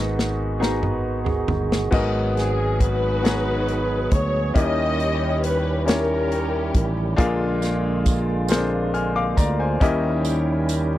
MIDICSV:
0, 0, Header, 1, 8, 480
1, 0, Start_track
1, 0, Key_signature, 5, "minor"
1, 0, Tempo, 877193
1, 1052, Time_signature, 6, 3, 24, 8
1, 6008, End_track
2, 0, Start_track
2, 0, Title_t, "Trumpet"
2, 0, Program_c, 0, 56
2, 1299, Note_on_c, 0, 68, 73
2, 1519, Note_off_c, 0, 68, 0
2, 1538, Note_on_c, 0, 71, 86
2, 2261, Note_on_c, 0, 73, 87
2, 2269, Note_off_c, 0, 71, 0
2, 2495, Note_off_c, 0, 73, 0
2, 2499, Note_on_c, 0, 75, 105
2, 2954, Note_off_c, 0, 75, 0
2, 2981, Note_on_c, 0, 71, 80
2, 3178, Note_off_c, 0, 71, 0
2, 3178, Note_on_c, 0, 71, 54
2, 3217, Note_on_c, 0, 70, 85
2, 3225, Note_off_c, 0, 71, 0
2, 3754, Note_off_c, 0, 70, 0
2, 6008, End_track
3, 0, Start_track
3, 0, Title_t, "String section"
3, 0, Program_c, 1, 48
3, 1305, Note_on_c, 1, 68, 70
3, 1522, Note_off_c, 1, 68, 0
3, 1535, Note_on_c, 1, 71, 98
3, 1541, Note_on_c, 1, 63, 66
3, 1542, Note_on_c, 1, 66, 67
3, 2235, Note_off_c, 1, 63, 0
3, 2235, Note_off_c, 1, 66, 0
3, 2251, Note_on_c, 1, 73, 85
3, 2254, Note_off_c, 1, 71, 0
3, 2492, Note_off_c, 1, 73, 0
3, 2499, Note_on_c, 1, 75, 92
3, 2510, Note_on_c, 1, 67, 70
3, 2512, Note_on_c, 1, 73, 70
3, 2954, Note_off_c, 1, 75, 0
3, 2974, Note_on_c, 1, 71, 90
3, 3196, Note_off_c, 1, 71, 0
3, 3199, Note_off_c, 1, 67, 0
3, 3200, Note_off_c, 1, 73, 0
3, 3216, Note_on_c, 1, 70, 78
3, 3223, Note_on_c, 1, 61, 58
3, 3225, Note_on_c, 1, 67, 57
3, 3754, Note_off_c, 1, 70, 0
3, 3916, Note_off_c, 1, 61, 0
3, 3916, Note_off_c, 1, 67, 0
3, 6008, End_track
4, 0, Start_track
4, 0, Title_t, "Clean electric guitar"
4, 0, Program_c, 2, 27
4, 328, Note_on_c, 2, 68, 70
4, 444, Note_off_c, 2, 68, 0
4, 448, Note_on_c, 2, 71, 62
4, 678, Note_off_c, 2, 71, 0
4, 681, Note_on_c, 2, 68, 68
4, 1028, Note_off_c, 2, 68, 0
4, 6008, End_track
5, 0, Start_track
5, 0, Title_t, "Grand piano"
5, 0, Program_c, 3, 0
5, 0, Control_c, 3, 64, 127
5, 0, Note_on_c, 3, 44, 68
5, 0, Note_on_c, 3, 59, 75
5, 0, Note_on_c, 3, 63, 73
5, 0, Note_on_c, 3, 66, 75
5, 0, Note_on_c, 3, 68, 71
5, 0, Note_on_c, 3, 75, 89
5, 196, Note_off_c, 3, 59, 0
5, 199, Note_off_c, 3, 63, 0
5, 200, Note_off_c, 3, 66, 0
5, 202, Note_off_c, 3, 68, 0
5, 204, Note_off_c, 3, 75, 0
5, 311, Note_off_c, 3, 44, 0
5, 324, Note_on_c, 3, 59, 56
5, 328, Note_on_c, 3, 63, 57
5, 332, Note_on_c, 3, 66, 53
5, 334, Note_on_c, 3, 68, 57
5, 337, Note_on_c, 3, 82, 65
5, 916, Note_off_c, 3, 59, 0
5, 918, Note_off_c, 3, 63, 0
5, 920, Note_off_c, 3, 66, 0
5, 921, Note_off_c, 3, 68, 0
5, 922, Note_off_c, 3, 82, 0
5, 1044, Note_on_c, 3, 59, 86
5, 1047, Note_on_c, 3, 66, 75
5, 1048, Note_on_c, 3, 44, 65
5, 1050, Note_on_c, 3, 68, 75
5, 1053, Note_on_c, 3, 70, 78
5, 1058, Note_on_c, 3, 75, 90
5, 1060, Control_c, 3, 64, 0
5, 1164, Control_c, 3, 64, 127
5, 1636, Note_off_c, 3, 59, 0
5, 1637, Note_off_c, 3, 66, 0
5, 1639, Note_off_c, 3, 68, 0
5, 1641, Note_off_c, 3, 70, 0
5, 1643, Note_off_c, 3, 75, 0
5, 1749, Note_off_c, 3, 44, 0
5, 1760, Note_on_c, 3, 59, 52
5, 1765, Note_on_c, 3, 66, 47
5, 1766, Note_on_c, 3, 68, 48
5, 1771, Note_on_c, 3, 82, 51
5, 1774, Note_on_c, 3, 73, 58
5, 2354, Note_off_c, 3, 59, 0
5, 2356, Note_off_c, 3, 66, 0
5, 2357, Note_off_c, 3, 68, 0
5, 2359, Note_off_c, 3, 82, 0
5, 2361, Note_off_c, 3, 73, 0
5, 2484, Note_on_c, 3, 61, 69
5, 2486, Note_on_c, 3, 64, 63
5, 2489, Note_on_c, 3, 51, 61
5, 2489, Note_on_c, 3, 67, 66
5, 2491, Note_on_c, 3, 70, 65
5, 2494, Note_on_c, 3, 75, 77
5, 2500, Control_c, 3, 64, 0
5, 2589, Control_c, 3, 64, 127
5, 3076, Note_off_c, 3, 61, 0
5, 3077, Note_off_c, 3, 64, 0
5, 3078, Note_off_c, 3, 67, 0
5, 3079, Note_off_c, 3, 70, 0
5, 3081, Note_off_c, 3, 75, 0
5, 3189, Note_off_c, 3, 51, 0
5, 3204, Note_on_c, 3, 61, 54
5, 3207, Note_on_c, 3, 64, 54
5, 3208, Note_on_c, 3, 67, 51
5, 3212, Note_on_c, 3, 70, 49
5, 3215, Note_on_c, 3, 73, 60
5, 3796, Note_off_c, 3, 61, 0
5, 3797, Note_off_c, 3, 64, 0
5, 3798, Note_off_c, 3, 67, 0
5, 3799, Note_off_c, 3, 70, 0
5, 3801, Note_off_c, 3, 73, 0
5, 3921, Note_on_c, 3, 62, 90
5, 3924, Note_on_c, 3, 65, 87
5, 3928, Note_on_c, 3, 46, 69
5, 3928, Note_on_c, 3, 68, 83
5, 3930, Note_on_c, 3, 70, 81
5, 3932, Note_on_c, 3, 77, 96
5, 3940, Control_c, 3, 64, 0
5, 4035, Control_c, 3, 64, 127
5, 4514, Note_off_c, 3, 62, 0
5, 4515, Note_off_c, 3, 65, 0
5, 4517, Note_off_c, 3, 68, 0
5, 4518, Note_off_c, 3, 70, 0
5, 4519, Note_off_c, 3, 77, 0
5, 4627, Note_off_c, 3, 46, 0
5, 4644, Note_on_c, 3, 60, 53
5, 4646, Note_on_c, 3, 65, 63
5, 4649, Note_on_c, 3, 68, 63
5, 4655, Note_on_c, 3, 70, 62
5, 4655, Note_on_c, 3, 72, 71
5, 4680, Note_on_c, 3, 62, 65
5, 4684, Note_off_c, 3, 60, 0
5, 4891, Note_on_c, 3, 80, 55
5, 4891, Note_on_c, 3, 89, 63
5, 4893, Note_off_c, 3, 72, 0
5, 5005, Note_off_c, 3, 80, 0
5, 5005, Note_off_c, 3, 89, 0
5, 5011, Note_on_c, 3, 86, 72
5, 5013, Note_on_c, 3, 77, 60
5, 5125, Note_off_c, 3, 86, 0
5, 5126, Note_off_c, 3, 77, 0
5, 5127, Note_on_c, 3, 82, 67
5, 5130, Note_on_c, 3, 74, 60
5, 5236, Note_off_c, 3, 65, 0
5, 5237, Note_off_c, 3, 68, 0
5, 5240, Note_off_c, 3, 70, 0
5, 5243, Note_off_c, 3, 82, 0
5, 5244, Note_off_c, 3, 74, 0
5, 5251, Note_on_c, 3, 80, 58
5, 5252, Note_on_c, 3, 72, 50
5, 5253, Note_off_c, 3, 62, 0
5, 5364, Note_on_c, 3, 61, 85
5, 5368, Note_on_c, 3, 64, 88
5, 5371, Note_on_c, 3, 51, 69
5, 5371, Note_on_c, 3, 67, 85
5, 5372, Note_on_c, 3, 70, 80
5, 5375, Note_on_c, 3, 75, 100
5, 5379, Control_c, 3, 64, 0
5, 5467, Control_c, 3, 64, 127
5, 5479, Note_off_c, 3, 72, 0
5, 5479, Note_off_c, 3, 80, 0
5, 5954, Note_off_c, 3, 61, 0
5, 5956, Note_off_c, 3, 64, 0
5, 5958, Note_off_c, 3, 67, 0
5, 5958, Note_off_c, 3, 70, 0
5, 5960, Note_off_c, 3, 75, 0
5, 6008, Note_off_c, 3, 51, 0
5, 6008, End_track
6, 0, Start_track
6, 0, Title_t, "Tonewheel organ"
6, 0, Program_c, 4, 16
6, 0, Note_on_c, 4, 51, 55
6, 0, Note_on_c, 4, 56, 54
6, 0, Note_on_c, 4, 59, 50
6, 0, Note_on_c, 4, 66, 66
6, 1032, Note_off_c, 4, 51, 0
6, 1040, Note_off_c, 4, 59, 0
6, 1040, Note_off_c, 4, 66, 0
6, 1041, Note_off_c, 4, 56, 0
6, 1054, Note_on_c, 4, 56, 55
6, 1054, Note_on_c, 4, 59, 52
6, 1055, Note_on_c, 4, 54, 59
6, 1057, Note_on_c, 4, 68, 61
6, 2479, Note_off_c, 4, 56, 0
6, 2479, Note_off_c, 4, 59, 0
6, 2480, Note_off_c, 4, 54, 0
6, 2481, Note_off_c, 4, 68, 0
6, 2496, Note_on_c, 4, 55, 54
6, 2496, Note_on_c, 4, 64, 68
6, 2497, Note_on_c, 4, 51, 58
6, 2499, Note_on_c, 4, 61, 57
6, 3919, Note_off_c, 4, 55, 0
6, 3920, Note_off_c, 4, 51, 0
6, 3920, Note_off_c, 4, 64, 0
6, 3921, Note_off_c, 4, 61, 0
6, 3931, Note_on_c, 4, 50, 68
6, 3931, Note_on_c, 4, 58, 57
6, 3932, Note_on_c, 4, 65, 72
6, 3933, Note_on_c, 4, 56, 60
6, 5356, Note_off_c, 4, 50, 0
6, 5356, Note_off_c, 4, 58, 0
6, 5356, Note_off_c, 4, 65, 0
6, 5357, Note_off_c, 4, 56, 0
6, 5370, Note_on_c, 4, 55, 60
6, 5370, Note_on_c, 4, 61, 62
6, 5371, Note_on_c, 4, 64, 74
6, 5372, Note_on_c, 4, 51, 66
6, 6008, Note_off_c, 4, 51, 0
6, 6008, Note_off_c, 4, 55, 0
6, 6008, Note_off_c, 4, 61, 0
6, 6008, Note_off_c, 4, 64, 0
6, 6008, End_track
7, 0, Start_track
7, 0, Title_t, "Fingered electric bass"
7, 0, Program_c, 5, 33
7, 0, Note_on_c, 5, 32, 83
7, 790, Note_off_c, 5, 32, 0
7, 816, Note_on_c, 5, 31, 77
7, 1035, Note_off_c, 5, 31, 0
7, 1052, Note_on_c, 5, 32, 94
7, 2230, Note_off_c, 5, 32, 0
7, 2253, Note_on_c, 5, 38, 79
7, 2473, Note_off_c, 5, 38, 0
7, 2493, Note_on_c, 5, 39, 89
7, 3670, Note_off_c, 5, 39, 0
7, 3693, Note_on_c, 5, 33, 88
7, 3913, Note_off_c, 5, 33, 0
7, 3932, Note_on_c, 5, 34, 93
7, 5109, Note_off_c, 5, 34, 0
7, 5131, Note_on_c, 5, 38, 82
7, 5351, Note_off_c, 5, 38, 0
7, 5370, Note_on_c, 5, 39, 94
7, 6008, Note_off_c, 5, 39, 0
7, 6008, End_track
8, 0, Start_track
8, 0, Title_t, "Drums"
8, 105, Note_on_c, 9, 38, 60
8, 159, Note_off_c, 9, 38, 0
8, 343, Note_on_c, 9, 38, 64
8, 397, Note_off_c, 9, 38, 0
8, 453, Note_on_c, 9, 45, 62
8, 508, Note_off_c, 9, 45, 0
8, 691, Note_on_c, 9, 43, 65
8, 746, Note_off_c, 9, 43, 0
8, 811, Note_on_c, 9, 43, 88
8, 866, Note_off_c, 9, 43, 0
8, 942, Note_on_c, 9, 38, 72
8, 997, Note_off_c, 9, 38, 0
8, 1052, Note_on_c, 9, 49, 83
8, 1053, Note_on_c, 9, 36, 105
8, 1107, Note_off_c, 9, 36, 0
8, 1107, Note_off_c, 9, 49, 0
8, 1298, Note_on_c, 9, 42, 42
8, 1304, Note_on_c, 9, 38, 33
8, 1353, Note_off_c, 9, 42, 0
8, 1358, Note_off_c, 9, 38, 0
8, 1534, Note_on_c, 9, 36, 82
8, 1535, Note_on_c, 9, 42, 64
8, 1589, Note_off_c, 9, 36, 0
8, 1590, Note_off_c, 9, 42, 0
8, 1777, Note_on_c, 9, 42, 69
8, 1786, Note_on_c, 9, 38, 92
8, 1832, Note_off_c, 9, 42, 0
8, 1841, Note_off_c, 9, 38, 0
8, 2016, Note_on_c, 9, 42, 45
8, 2070, Note_off_c, 9, 42, 0
8, 2252, Note_on_c, 9, 42, 66
8, 2253, Note_on_c, 9, 36, 85
8, 2306, Note_off_c, 9, 42, 0
8, 2308, Note_off_c, 9, 36, 0
8, 2493, Note_on_c, 9, 36, 106
8, 2494, Note_on_c, 9, 42, 74
8, 2548, Note_off_c, 9, 36, 0
8, 2548, Note_off_c, 9, 42, 0
8, 2736, Note_on_c, 9, 42, 45
8, 2791, Note_off_c, 9, 42, 0
8, 2975, Note_on_c, 9, 42, 67
8, 3029, Note_off_c, 9, 42, 0
8, 3216, Note_on_c, 9, 42, 71
8, 3225, Note_on_c, 9, 38, 91
8, 3271, Note_off_c, 9, 42, 0
8, 3279, Note_off_c, 9, 38, 0
8, 3457, Note_on_c, 9, 42, 48
8, 3511, Note_off_c, 9, 42, 0
8, 3691, Note_on_c, 9, 42, 63
8, 3692, Note_on_c, 9, 36, 85
8, 3745, Note_off_c, 9, 42, 0
8, 3746, Note_off_c, 9, 36, 0
8, 3930, Note_on_c, 9, 42, 70
8, 3931, Note_on_c, 9, 36, 110
8, 3984, Note_off_c, 9, 42, 0
8, 3985, Note_off_c, 9, 36, 0
8, 4170, Note_on_c, 9, 54, 45
8, 4174, Note_on_c, 9, 42, 48
8, 4179, Note_on_c, 9, 38, 35
8, 4225, Note_off_c, 9, 54, 0
8, 4228, Note_off_c, 9, 42, 0
8, 4234, Note_off_c, 9, 38, 0
8, 4409, Note_on_c, 9, 42, 67
8, 4411, Note_on_c, 9, 36, 87
8, 4412, Note_on_c, 9, 54, 47
8, 4464, Note_off_c, 9, 42, 0
8, 4466, Note_off_c, 9, 36, 0
8, 4467, Note_off_c, 9, 54, 0
8, 4642, Note_on_c, 9, 54, 86
8, 4653, Note_on_c, 9, 42, 73
8, 4661, Note_on_c, 9, 38, 93
8, 4697, Note_off_c, 9, 54, 0
8, 4707, Note_off_c, 9, 42, 0
8, 4716, Note_off_c, 9, 38, 0
8, 4894, Note_on_c, 9, 42, 46
8, 4949, Note_off_c, 9, 42, 0
8, 5130, Note_on_c, 9, 36, 82
8, 5131, Note_on_c, 9, 54, 52
8, 5132, Note_on_c, 9, 42, 67
8, 5185, Note_off_c, 9, 36, 0
8, 5186, Note_off_c, 9, 54, 0
8, 5187, Note_off_c, 9, 42, 0
8, 5369, Note_on_c, 9, 36, 105
8, 5371, Note_on_c, 9, 42, 78
8, 5424, Note_off_c, 9, 36, 0
8, 5425, Note_off_c, 9, 42, 0
8, 5607, Note_on_c, 9, 54, 49
8, 5615, Note_on_c, 9, 42, 47
8, 5662, Note_off_c, 9, 54, 0
8, 5670, Note_off_c, 9, 42, 0
8, 5848, Note_on_c, 9, 54, 48
8, 5851, Note_on_c, 9, 42, 68
8, 5903, Note_off_c, 9, 54, 0
8, 5906, Note_off_c, 9, 42, 0
8, 6008, End_track
0, 0, End_of_file